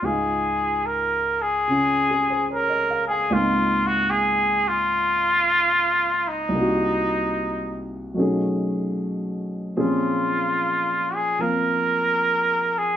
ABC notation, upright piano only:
X:1
M:4/4
L:1/16
Q:"Swing" 1/4=74
K:Db
V:1 name="Upright piano"
z8 z2 A c d e f a | z16 | z16 | z16 |]
V:2 name="Upright piano"
[D,,A,,A,EF]8 [D,DF]8 | [D,,A,,B,CEf]16 | [C,,C,B,EG]8 [_C,G,=A,DE_A]8 | [B,,F,CDA]8 [F,B,CF]8 |]